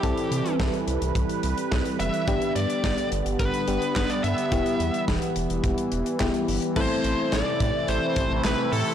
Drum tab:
CC |----------------|----------------|----------------|x---------------|
HH |xxxx-xxxxxxx-xxx|xxxx-xxxxxxx-xxx|xxxx-xxxxxxx-xox|--x-x-x-x-x-x-o-|
CP |----------------|------------x---|------------x---|------------x---|
SD |----o-------o---|----o-------o---|----o-------o---|----o-------o---|
BD |o---o---o---o---|o---o---o---o---|o---o---o---o---|o-----o---o-----|